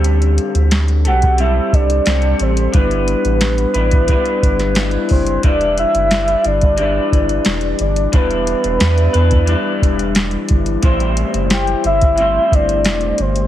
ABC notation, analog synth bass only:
X:1
M:4/4
L:1/16
Q:1/4=89
K:Em
V:1 name="Analog synth bass" clef=bass
D,,3 D,,3 B,,,4 C,,2 C,,2 A,,,2 | G,,,3 A,,,3 A,,,3 z G,,,4 F,,,2 | E,,,3 F,,,3 G,,,4 G,,,2 E,,,2 G,,,2 | E,,,3 E,,, E,,2 E,,3 z E,,,4 G,,,2 |
A,,,3 F,,,3 G,,,4 G,,,2 E,,,2 G,,,2 |]